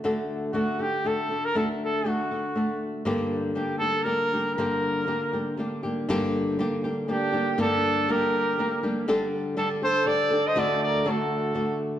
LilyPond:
<<
  \new Staff \with { instrumentName = "Trumpet" } { \time 3/4 \key g \minor \tempo 4 = 120 r4 fis'8 g'8 a'8. bes'16 | a'8 a'8 fis'4. r8 | r4 g'8 a'8 bes'4 | bes'2 r4 |
r2 g'4 | a'4 bes'4. r8 | r4 a'8 c''8 d''8. ees''16 | d''8 d''8 a'4. r8 | }
  \new Staff \with { instrumentName = "Trumpet" } { \time 3/4 \key g \minor r2. | r2. | r2. | r2. |
r2 d'4 | d'4 g'4. r8 | r4 d'8 a'8 a'8. c''16 | a'8 bes'8 fis'4. r8 | }
  \new Staff \with { instrumentName = "Nylon-string guitar" } { \time 3/4 \key g \minor <d a d' fis' a'>4 <a d' fis' a'>8 <d' fis' a'>8 <a d' fis' a'>8 <d' fis' a'>8 | <d a d' fis' a'>4 <a d' fis' a'>8 <d' fis' a'>8 <a d' fis' a'>4 | <g, d g bes d' g'>4 <g bes d' g'>8 <g bes d' g'>8 <g bes d' g'>8 <g bes d' g'>8 | <g, d g bes d' g'>4 <g bes d' g'>8 <g bes d' g'>8 <g bes d' g'>8 <g bes d' g'>8 |
<g, d g bes d' g'>4 <g bes d' g'>8 <g bes d' g'>8 <g bes d' g'>8 <g bes d' g'>8 | <g, d g bes d' g'>4 <g bes d' g'>4 <g bes d' g'>8 <g bes d' g'>8 | <d g d' g' a'>4 <g d' g' a'>8 <d' g' a'>8 <g d' g' a'>8 <d' g' a'>8 | <d a d' fis' a'>4 <a d' fis' a'>4 <a d' fis' a'>4 | }
>>